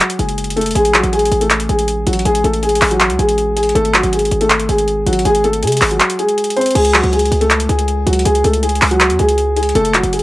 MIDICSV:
0, 0, Header, 1, 4, 480
1, 0, Start_track
1, 0, Tempo, 375000
1, 964, Time_signature, 4, 2, 24, 8
1, 13093, End_track
2, 0, Start_track
2, 0, Title_t, "Grand piano"
2, 0, Program_c, 0, 0
2, 0, Note_on_c, 0, 54, 55
2, 0, Note_on_c, 0, 66, 72
2, 223, Note_off_c, 0, 66, 0
2, 227, Note_off_c, 0, 54, 0
2, 242, Note_on_c, 0, 68, 75
2, 252, Note_on_c, 0, 56, 58
2, 694, Note_off_c, 0, 68, 0
2, 699, Note_off_c, 0, 56, 0
2, 721, Note_on_c, 0, 69, 87
2, 732, Note_on_c, 0, 57, 69
2, 938, Note_off_c, 0, 69, 0
2, 944, Note_off_c, 0, 57, 0
2, 959, Note_on_c, 0, 68, 100
2, 970, Note_on_c, 0, 56, 75
2, 1177, Note_off_c, 0, 68, 0
2, 1183, Note_off_c, 0, 56, 0
2, 1202, Note_on_c, 0, 66, 77
2, 1212, Note_on_c, 0, 54, 62
2, 1419, Note_off_c, 0, 66, 0
2, 1424, Note_off_c, 0, 54, 0
2, 1444, Note_on_c, 0, 68, 88
2, 1455, Note_on_c, 0, 56, 60
2, 1783, Note_off_c, 0, 68, 0
2, 1788, Note_off_c, 0, 56, 0
2, 1802, Note_on_c, 0, 69, 77
2, 1812, Note_on_c, 0, 57, 60
2, 2141, Note_off_c, 0, 69, 0
2, 2147, Note_off_c, 0, 57, 0
2, 2165, Note_on_c, 0, 68, 81
2, 2175, Note_on_c, 0, 56, 60
2, 2616, Note_off_c, 0, 68, 0
2, 2621, Note_off_c, 0, 56, 0
2, 2646, Note_on_c, 0, 66, 74
2, 2655, Note_on_c, 0, 54, 66
2, 2861, Note_off_c, 0, 66, 0
2, 2866, Note_off_c, 0, 54, 0
2, 2884, Note_on_c, 0, 68, 104
2, 2895, Note_on_c, 0, 56, 87
2, 3100, Note_off_c, 0, 68, 0
2, 3106, Note_off_c, 0, 56, 0
2, 3124, Note_on_c, 0, 69, 88
2, 3135, Note_on_c, 0, 57, 62
2, 3340, Note_off_c, 0, 69, 0
2, 3346, Note_off_c, 0, 57, 0
2, 3363, Note_on_c, 0, 68, 94
2, 3374, Note_on_c, 0, 56, 69
2, 3702, Note_off_c, 0, 68, 0
2, 3708, Note_off_c, 0, 56, 0
2, 3727, Note_on_c, 0, 66, 83
2, 3737, Note_on_c, 0, 54, 70
2, 4064, Note_off_c, 0, 66, 0
2, 4069, Note_off_c, 0, 54, 0
2, 4084, Note_on_c, 0, 68, 84
2, 4094, Note_on_c, 0, 56, 71
2, 4535, Note_off_c, 0, 68, 0
2, 4541, Note_off_c, 0, 56, 0
2, 4562, Note_on_c, 0, 68, 91
2, 4573, Note_on_c, 0, 56, 63
2, 4779, Note_off_c, 0, 68, 0
2, 4785, Note_off_c, 0, 56, 0
2, 4803, Note_on_c, 0, 69, 113
2, 4813, Note_on_c, 0, 57, 85
2, 5019, Note_off_c, 0, 69, 0
2, 5025, Note_off_c, 0, 57, 0
2, 5047, Note_on_c, 0, 66, 77
2, 5057, Note_on_c, 0, 54, 61
2, 5261, Note_off_c, 0, 66, 0
2, 5267, Note_off_c, 0, 54, 0
2, 5287, Note_on_c, 0, 68, 74
2, 5297, Note_on_c, 0, 56, 57
2, 5624, Note_off_c, 0, 68, 0
2, 5630, Note_off_c, 0, 56, 0
2, 5645, Note_on_c, 0, 69, 86
2, 5655, Note_on_c, 0, 57, 71
2, 5983, Note_off_c, 0, 69, 0
2, 5988, Note_off_c, 0, 57, 0
2, 6003, Note_on_c, 0, 68, 84
2, 6014, Note_on_c, 0, 56, 73
2, 6455, Note_off_c, 0, 68, 0
2, 6461, Note_off_c, 0, 56, 0
2, 6488, Note_on_c, 0, 66, 83
2, 6498, Note_on_c, 0, 54, 69
2, 6702, Note_off_c, 0, 66, 0
2, 6707, Note_off_c, 0, 54, 0
2, 6724, Note_on_c, 0, 68, 115
2, 6734, Note_on_c, 0, 56, 94
2, 6940, Note_off_c, 0, 68, 0
2, 6945, Note_off_c, 0, 56, 0
2, 6965, Note_on_c, 0, 69, 93
2, 6975, Note_on_c, 0, 57, 64
2, 7180, Note_off_c, 0, 69, 0
2, 7186, Note_off_c, 0, 57, 0
2, 7206, Note_on_c, 0, 68, 86
2, 7216, Note_on_c, 0, 56, 68
2, 7543, Note_off_c, 0, 68, 0
2, 7549, Note_off_c, 0, 56, 0
2, 7566, Note_on_c, 0, 66, 72
2, 7576, Note_on_c, 0, 54, 55
2, 7903, Note_off_c, 0, 66, 0
2, 7909, Note_off_c, 0, 54, 0
2, 7924, Note_on_c, 0, 68, 85
2, 7934, Note_on_c, 0, 56, 64
2, 8375, Note_off_c, 0, 68, 0
2, 8381, Note_off_c, 0, 56, 0
2, 8403, Note_on_c, 0, 72, 92
2, 8413, Note_on_c, 0, 60, 73
2, 8619, Note_off_c, 0, 72, 0
2, 8625, Note_off_c, 0, 60, 0
2, 8640, Note_on_c, 0, 68, 104
2, 8651, Note_on_c, 0, 56, 77
2, 8857, Note_off_c, 0, 68, 0
2, 8863, Note_off_c, 0, 56, 0
2, 8885, Note_on_c, 0, 66, 84
2, 8895, Note_on_c, 0, 54, 66
2, 9100, Note_off_c, 0, 66, 0
2, 9106, Note_off_c, 0, 54, 0
2, 9121, Note_on_c, 0, 68, 79
2, 9132, Note_on_c, 0, 56, 65
2, 9461, Note_off_c, 0, 68, 0
2, 9467, Note_off_c, 0, 56, 0
2, 9482, Note_on_c, 0, 69, 87
2, 9494, Note_on_c, 0, 57, 66
2, 9821, Note_off_c, 0, 69, 0
2, 9827, Note_off_c, 0, 57, 0
2, 9846, Note_on_c, 0, 68, 84
2, 9854, Note_on_c, 0, 56, 60
2, 10296, Note_off_c, 0, 68, 0
2, 10301, Note_off_c, 0, 56, 0
2, 10324, Note_on_c, 0, 66, 80
2, 10334, Note_on_c, 0, 54, 62
2, 10540, Note_off_c, 0, 66, 0
2, 10545, Note_off_c, 0, 54, 0
2, 10563, Note_on_c, 0, 68, 102
2, 10573, Note_on_c, 0, 56, 84
2, 10779, Note_off_c, 0, 68, 0
2, 10785, Note_off_c, 0, 56, 0
2, 10804, Note_on_c, 0, 69, 77
2, 10814, Note_on_c, 0, 57, 62
2, 11020, Note_off_c, 0, 69, 0
2, 11025, Note_off_c, 0, 57, 0
2, 11044, Note_on_c, 0, 68, 88
2, 11053, Note_on_c, 0, 56, 67
2, 11383, Note_off_c, 0, 68, 0
2, 11388, Note_off_c, 0, 56, 0
2, 11405, Note_on_c, 0, 66, 90
2, 11416, Note_on_c, 0, 54, 74
2, 11743, Note_off_c, 0, 66, 0
2, 11749, Note_off_c, 0, 54, 0
2, 11766, Note_on_c, 0, 68, 90
2, 11776, Note_on_c, 0, 56, 69
2, 12216, Note_off_c, 0, 68, 0
2, 12222, Note_off_c, 0, 56, 0
2, 12246, Note_on_c, 0, 68, 88
2, 12255, Note_on_c, 0, 56, 69
2, 12461, Note_off_c, 0, 68, 0
2, 12466, Note_off_c, 0, 56, 0
2, 12485, Note_on_c, 0, 69, 119
2, 12497, Note_on_c, 0, 57, 89
2, 12700, Note_off_c, 0, 69, 0
2, 12707, Note_off_c, 0, 57, 0
2, 12729, Note_on_c, 0, 66, 85
2, 12739, Note_on_c, 0, 54, 61
2, 12942, Note_off_c, 0, 66, 0
2, 12948, Note_off_c, 0, 54, 0
2, 12966, Note_on_c, 0, 68, 78
2, 12976, Note_on_c, 0, 56, 60
2, 13093, Note_off_c, 0, 56, 0
2, 13093, Note_off_c, 0, 68, 0
2, 13093, End_track
3, 0, Start_track
3, 0, Title_t, "808-style bass"
3, 0, Program_c, 1, 38
3, 244, Note_on_c, 1, 30, 105
3, 936, Note_off_c, 1, 30, 0
3, 965, Note_on_c, 1, 33, 120
3, 1310, Note_off_c, 1, 33, 0
3, 1324, Note_on_c, 1, 33, 98
3, 1670, Note_off_c, 1, 33, 0
3, 1685, Note_on_c, 1, 33, 108
3, 2145, Note_off_c, 1, 33, 0
3, 2166, Note_on_c, 1, 33, 107
3, 2626, Note_off_c, 1, 33, 0
3, 2646, Note_on_c, 1, 33, 103
3, 2875, Note_off_c, 1, 33, 0
3, 2885, Note_on_c, 1, 33, 117
3, 3115, Note_off_c, 1, 33, 0
3, 3125, Note_on_c, 1, 33, 106
3, 3585, Note_off_c, 1, 33, 0
3, 3606, Note_on_c, 1, 33, 112
3, 3964, Note_on_c, 1, 37, 104
3, 3983, Note_off_c, 1, 33, 0
3, 4078, Note_off_c, 1, 37, 0
3, 4083, Note_on_c, 1, 33, 109
3, 4775, Note_off_c, 1, 33, 0
3, 4803, Note_on_c, 1, 32, 120
3, 5149, Note_off_c, 1, 32, 0
3, 5163, Note_on_c, 1, 32, 103
3, 5509, Note_off_c, 1, 32, 0
3, 5523, Note_on_c, 1, 32, 112
3, 5985, Note_off_c, 1, 32, 0
3, 6003, Note_on_c, 1, 32, 104
3, 6464, Note_off_c, 1, 32, 0
3, 6483, Note_on_c, 1, 32, 111
3, 6714, Note_off_c, 1, 32, 0
3, 6722, Note_on_c, 1, 32, 112
3, 7203, Note_on_c, 1, 48, 105
3, 7222, Note_off_c, 1, 32, 0
3, 7432, Note_off_c, 1, 48, 0
3, 7442, Note_on_c, 1, 32, 106
3, 7673, Note_off_c, 1, 32, 0
3, 8643, Note_on_c, 1, 37, 117
3, 8989, Note_off_c, 1, 37, 0
3, 9003, Note_on_c, 1, 37, 99
3, 9349, Note_off_c, 1, 37, 0
3, 9363, Note_on_c, 1, 37, 108
3, 9824, Note_off_c, 1, 37, 0
3, 9845, Note_on_c, 1, 37, 105
3, 10305, Note_off_c, 1, 37, 0
3, 10324, Note_on_c, 1, 37, 111
3, 10554, Note_off_c, 1, 37, 0
3, 10564, Note_on_c, 1, 37, 118
3, 10795, Note_off_c, 1, 37, 0
3, 10805, Note_on_c, 1, 37, 110
3, 11266, Note_off_c, 1, 37, 0
3, 11287, Note_on_c, 1, 37, 110
3, 11646, Note_on_c, 1, 40, 104
3, 11666, Note_off_c, 1, 37, 0
3, 11759, Note_off_c, 1, 40, 0
3, 11767, Note_on_c, 1, 37, 107
3, 12457, Note_off_c, 1, 37, 0
3, 12483, Note_on_c, 1, 30, 117
3, 12829, Note_off_c, 1, 30, 0
3, 12843, Note_on_c, 1, 30, 96
3, 13093, Note_off_c, 1, 30, 0
3, 13093, End_track
4, 0, Start_track
4, 0, Title_t, "Drums"
4, 5, Note_on_c, 9, 39, 123
4, 5, Note_on_c, 9, 42, 87
4, 126, Note_off_c, 9, 42, 0
4, 126, Note_on_c, 9, 42, 85
4, 133, Note_off_c, 9, 39, 0
4, 245, Note_off_c, 9, 42, 0
4, 245, Note_on_c, 9, 42, 75
4, 366, Note_off_c, 9, 42, 0
4, 366, Note_on_c, 9, 42, 58
4, 485, Note_off_c, 9, 42, 0
4, 485, Note_on_c, 9, 42, 57
4, 565, Note_off_c, 9, 42, 0
4, 565, Note_on_c, 9, 42, 59
4, 644, Note_off_c, 9, 42, 0
4, 644, Note_on_c, 9, 42, 57
4, 725, Note_off_c, 9, 42, 0
4, 725, Note_on_c, 9, 42, 46
4, 784, Note_off_c, 9, 42, 0
4, 784, Note_on_c, 9, 42, 55
4, 845, Note_off_c, 9, 42, 0
4, 845, Note_on_c, 9, 42, 67
4, 905, Note_off_c, 9, 42, 0
4, 905, Note_on_c, 9, 42, 77
4, 965, Note_off_c, 9, 42, 0
4, 965, Note_on_c, 9, 42, 91
4, 1088, Note_off_c, 9, 42, 0
4, 1088, Note_on_c, 9, 42, 64
4, 1205, Note_on_c, 9, 39, 108
4, 1207, Note_off_c, 9, 42, 0
4, 1207, Note_on_c, 9, 42, 67
4, 1325, Note_off_c, 9, 42, 0
4, 1325, Note_on_c, 9, 42, 57
4, 1333, Note_off_c, 9, 39, 0
4, 1446, Note_off_c, 9, 42, 0
4, 1446, Note_on_c, 9, 42, 62
4, 1526, Note_off_c, 9, 42, 0
4, 1526, Note_on_c, 9, 42, 66
4, 1606, Note_off_c, 9, 42, 0
4, 1606, Note_on_c, 9, 42, 65
4, 1685, Note_off_c, 9, 42, 0
4, 1685, Note_on_c, 9, 42, 76
4, 1807, Note_off_c, 9, 42, 0
4, 1807, Note_on_c, 9, 42, 59
4, 1925, Note_on_c, 9, 39, 122
4, 1926, Note_off_c, 9, 42, 0
4, 1926, Note_on_c, 9, 42, 86
4, 2047, Note_off_c, 9, 42, 0
4, 2047, Note_on_c, 9, 42, 84
4, 2053, Note_off_c, 9, 39, 0
4, 2167, Note_off_c, 9, 42, 0
4, 2167, Note_on_c, 9, 42, 73
4, 2287, Note_off_c, 9, 42, 0
4, 2287, Note_on_c, 9, 42, 57
4, 2406, Note_off_c, 9, 42, 0
4, 2406, Note_on_c, 9, 42, 73
4, 2534, Note_off_c, 9, 42, 0
4, 2645, Note_on_c, 9, 42, 60
4, 2726, Note_off_c, 9, 42, 0
4, 2726, Note_on_c, 9, 42, 63
4, 2805, Note_off_c, 9, 42, 0
4, 2805, Note_on_c, 9, 42, 61
4, 2885, Note_off_c, 9, 42, 0
4, 2885, Note_on_c, 9, 42, 89
4, 3007, Note_off_c, 9, 42, 0
4, 3007, Note_on_c, 9, 42, 62
4, 3128, Note_off_c, 9, 42, 0
4, 3128, Note_on_c, 9, 42, 68
4, 3245, Note_off_c, 9, 42, 0
4, 3245, Note_on_c, 9, 42, 57
4, 3364, Note_off_c, 9, 42, 0
4, 3364, Note_on_c, 9, 42, 64
4, 3444, Note_off_c, 9, 42, 0
4, 3444, Note_on_c, 9, 42, 66
4, 3525, Note_off_c, 9, 42, 0
4, 3525, Note_on_c, 9, 42, 65
4, 3605, Note_on_c, 9, 39, 92
4, 3605, Note_on_c, 9, 46, 77
4, 3653, Note_off_c, 9, 42, 0
4, 3726, Note_on_c, 9, 42, 61
4, 3733, Note_off_c, 9, 39, 0
4, 3733, Note_off_c, 9, 46, 0
4, 3845, Note_off_c, 9, 42, 0
4, 3845, Note_on_c, 9, 39, 120
4, 3845, Note_on_c, 9, 42, 89
4, 3966, Note_off_c, 9, 42, 0
4, 3966, Note_on_c, 9, 42, 85
4, 3973, Note_off_c, 9, 39, 0
4, 4086, Note_off_c, 9, 42, 0
4, 4086, Note_on_c, 9, 42, 72
4, 4207, Note_off_c, 9, 42, 0
4, 4207, Note_on_c, 9, 42, 58
4, 4325, Note_off_c, 9, 42, 0
4, 4325, Note_on_c, 9, 42, 71
4, 4453, Note_off_c, 9, 42, 0
4, 4564, Note_on_c, 9, 42, 63
4, 4644, Note_off_c, 9, 42, 0
4, 4644, Note_on_c, 9, 42, 64
4, 4724, Note_off_c, 9, 42, 0
4, 4724, Note_on_c, 9, 42, 63
4, 4805, Note_off_c, 9, 42, 0
4, 4805, Note_on_c, 9, 42, 90
4, 4926, Note_off_c, 9, 42, 0
4, 4926, Note_on_c, 9, 42, 60
4, 5045, Note_on_c, 9, 39, 107
4, 5047, Note_off_c, 9, 42, 0
4, 5047, Note_on_c, 9, 42, 67
4, 5164, Note_off_c, 9, 42, 0
4, 5164, Note_on_c, 9, 42, 57
4, 5173, Note_off_c, 9, 39, 0
4, 5284, Note_off_c, 9, 42, 0
4, 5284, Note_on_c, 9, 42, 62
4, 5364, Note_off_c, 9, 42, 0
4, 5364, Note_on_c, 9, 42, 64
4, 5443, Note_off_c, 9, 42, 0
4, 5443, Note_on_c, 9, 42, 61
4, 5522, Note_off_c, 9, 42, 0
4, 5522, Note_on_c, 9, 42, 76
4, 5643, Note_off_c, 9, 42, 0
4, 5643, Note_on_c, 9, 42, 63
4, 5762, Note_off_c, 9, 42, 0
4, 5762, Note_on_c, 9, 39, 120
4, 5762, Note_on_c, 9, 42, 87
4, 5883, Note_off_c, 9, 42, 0
4, 5883, Note_on_c, 9, 42, 84
4, 5890, Note_off_c, 9, 39, 0
4, 6003, Note_off_c, 9, 42, 0
4, 6003, Note_on_c, 9, 42, 74
4, 6124, Note_off_c, 9, 42, 0
4, 6124, Note_on_c, 9, 42, 59
4, 6243, Note_off_c, 9, 42, 0
4, 6243, Note_on_c, 9, 42, 69
4, 6371, Note_off_c, 9, 42, 0
4, 6483, Note_on_c, 9, 42, 62
4, 6563, Note_off_c, 9, 42, 0
4, 6563, Note_on_c, 9, 42, 61
4, 6643, Note_off_c, 9, 42, 0
4, 6643, Note_on_c, 9, 42, 64
4, 6723, Note_off_c, 9, 42, 0
4, 6723, Note_on_c, 9, 42, 87
4, 6844, Note_off_c, 9, 42, 0
4, 6844, Note_on_c, 9, 42, 61
4, 6965, Note_off_c, 9, 42, 0
4, 6965, Note_on_c, 9, 42, 65
4, 7081, Note_off_c, 9, 42, 0
4, 7081, Note_on_c, 9, 42, 59
4, 7202, Note_off_c, 9, 42, 0
4, 7202, Note_on_c, 9, 42, 64
4, 7262, Note_off_c, 9, 42, 0
4, 7262, Note_on_c, 9, 42, 63
4, 7323, Note_off_c, 9, 42, 0
4, 7323, Note_on_c, 9, 42, 62
4, 7383, Note_off_c, 9, 42, 0
4, 7383, Note_on_c, 9, 42, 61
4, 7444, Note_on_c, 9, 39, 94
4, 7444, Note_on_c, 9, 46, 79
4, 7511, Note_off_c, 9, 42, 0
4, 7565, Note_on_c, 9, 42, 61
4, 7572, Note_off_c, 9, 39, 0
4, 7572, Note_off_c, 9, 46, 0
4, 7683, Note_on_c, 9, 39, 119
4, 7684, Note_off_c, 9, 42, 0
4, 7684, Note_on_c, 9, 42, 86
4, 7806, Note_off_c, 9, 42, 0
4, 7806, Note_on_c, 9, 42, 89
4, 7811, Note_off_c, 9, 39, 0
4, 7924, Note_off_c, 9, 42, 0
4, 7924, Note_on_c, 9, 42, 74
4, 8046, Note_off_c, 9, 42, 0
4, 8046, Note_on_c, 9, 42, 57
4, 8164, Note_off_c, 9, 42, 0
4, 8164, Note_on_c, 9, 42, 59
4, 8243, Note_off_c, 9, 42, 0
4, 8243, Note_on_c, 9, 42, 59
4, 8324, Note_off_c, 9, 42, 0
4, 8324, Note_on_c, 9, 42, 59
4, 8404, Note_off_c, 9, 42, 0
4, 8404, Note_on_c, 9, 42, 44
4, 8464, Note_off_c, 9, 42, 0
4, 8464, Note_on_c, 9, 42, 55
4, 8523, Note_off_c, 9, 42, 0
4, 8523, Note_on_c, 9, 42, 67
4, 8583, Note_off_c, 9, 42, 0
4, 8583, Note_on_c, 9, 42, 75
4, 8644, Note_off_c, 9, 42, 0
4, 8644, Note_on_c, 9, 42, 90
4, 8644, Note_on_c, 9, 49, 109
4, 8765, Note_off_c, 9, 42, 0
4, 8765, Note_on_c, 9, 42, 62
4, 8772, Note_off_c, 9, 49, 0
4, 8884, Note_on_c, 9, 39, 106
4, 8886, Note_off_c, 9, 42, 0
4, 8886, Note_on_c, 9, 42, 67
4, 9004, Note_off_c, 9, 42, 0
4, 9004, Note_on_c, 9, 42, 59
4, 9012, Note_off_c, 9, 39, 0
4, 9124, Note_off_c, 9, 42, 0
4, 9124, Note_on_c, 9, 42, 64
4, 9205, Note_off_c, 9, 42, 0
4, 9205, Note_on_c, 9, 42, 62
4, 9284, Note_off_c, 9, 42, 0
4, 9284, Note_on_c, 9, 42, 63
4, 9365, Note_off_c, 9, 42, 0
4, 9365, Note_on_c, 9, 42, 80
4, 9486, Note_off_c, 9, 42, 0
4, 9486, Note_on_c, 9, 42, 59
4, 9604, Note_on_c, 9, 39, 122
4, 9605, Note_off_c, 9, 42, 0
4, 9605, Note_on_c, 9, 42, 87
4, 9726, Note_off_c, 9, 42, 0
4, 9726, Note_on_c, 9, 42, 88
4, 9732, Note_off_c, 9, 39, 0
4, 9845, Note_off_c, 9, 42, 0
4, 9845, Note_on_c, 9, 42, 76
4, 9966, Note_off_c, 9, 42, 0
4, 9966, Note_on_c, 9, 42, 56
4, 10086, Note_off_c, 9, 42, 0
4, 10086, Note_on_c, 9, 42, 72
4, 10214, Note_off_c, 9, 42, 0
4, 10325, Note_on_c, 9, 42, 60
4, 10404, Note_off_c, 9, 42, 0
4, 10404, Note_on_c, 9, 42, 64
4, 10485, Note_off_c, 9, 42, 0
4, 10485, Note_on_c, 9, 42, 62
4, 10565, Note_off_c, 9, 42, 0
4, 10565, Note_on_c, 9, 42, 88
4, 10688, Note_off_c, 9, 42, 0
4, 10688, Note_on_c, 9, 42, 60
4, 10807, Note_off_c, 9, 42, 0
4, 10807, Note_on_c, 9, 42, 67
4, 10924, Note_off_c, 9, 42, 0
4, 10924, Note_on_c, 9, 42, 58
4, 11045, Note_off_c, 9, 42, 0
4, 11045, Note_on_c, 9, 42, 62
4, 11124, Note_off_c, 9, 42, 0
4, 11124, Note_on_c, 9, 42, 63
4, 11204, Note_off_c, 9, 42, 0
4, 11204, Note_on_c, 9, 42, 64
4, 11286, Note_on_c, 9, 39, 95
4, 11286, Note_on_c, 9, 46, 80
4, 11332, Note_off_c, 9, 42, 0
4, 11406, Note_on_c, 9, 42, 61
4, 11414, Note_off_c, 9, 39, 0
4, 11414, Note_off_c, 9, 46, 0
4, 11525, Note_off_c, 9, 42, 0
4, 11525, Note_on_c, 9, 39, 122
4, 11525, Note_on_c, 9, 42, 91
4, 11646, Note_off_c, 9, 42, 0
4, 11646, Note_on_c, 9, 42, 85
4, 11653, Note_off_c, 9, 39, 0
4, 11765, Note_off_c, 9, 42, 0
4, 11765, Note_on_c, 9, 42, 75
4, 11886, Note_off_c, 9, 42, 0
4, 11886, Note_on_c, 9, 42, 59
4, 12005, Note_off_c, 9, 42, 0
4, 12005, Note_on_c, 9, 42, 72
4, 12133, Note_off_c, 9, 42, 0
4, 12243, Note_on_c, 9, 42, 62
4, 12324, Note_off_c, 9, 42, 0
4, 12324, Note_on_c, 9, 42, 62
4, 12404, Note_off_c, 9, 42, 0
4, 12404, Note_on_c, 9, 42, 63
4, 12484, Note_off_c, 9, 42, 0
4, 12484, Note_on_c, 9, 42, 89
4, 12607, Note_off_c, 9, 42, 0
4, 12607, Note_on_c, 9, 42, 63
4, 12726, Note_on_c, 9, 39, 110
4, 12727, Note_off_c, 9, 42, 0
4, 12727, Note_on_c, 9, 42, 68
4, 12845, Note_off_c, 9, 42, 0
4, 12845, Note_on_c, 9, 42, 57
4, 12854, Note_off_c, 9, 39, 0
4, 12964, Note_off_c, 9, 42, 0
4, 12964, Note_on_c, 9, 42, 64
4, 13045, Note_off_c, 9, 42, 0
4, 13045, Note_on_c, 9, 42, 64
4, 13093, Note_off_c, 9, 42, 0
4, 13093, End_track
0, 0, End_of_file